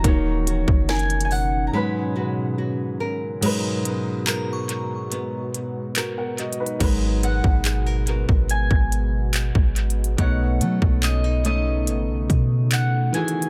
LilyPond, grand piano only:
\new Staff \with { instrumentName = "Grand piano" } { \time 4/4 \key gis \minor \tempo 4 = 71 << { r1 | r2. r16 <ais' fis''>16 <fis' dis''>16 <dis' b'>16~ | <dis' b'>16 r2. r8. | r1 | } \\ { <dis ais fis' cis''>2 <gis, fis gis' b'>2 | <gis, fis ais' b'>1 | <gis, fis ais' b'>1 | <b, a dis' cis''>2.~ <b, a dis' cis''>8 <dis e fis' gis'>8 | } >> }